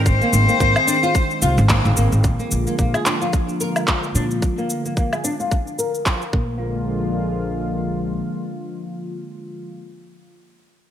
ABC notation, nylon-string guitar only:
X:1
M:4/4
L:1/16
Q:"Swing 16ths" 1/4=110
K:Bbmix
V:1 name="Nylon-string guitar"
z B,2 B, B, A D F z2 F z B, z B, z | z B,2 B, B, A D F z2 B2 F, z D z | z B,2 B, B, A D F z2 B2 F, z B,2- | B,2 z12 z2 |
z16 |]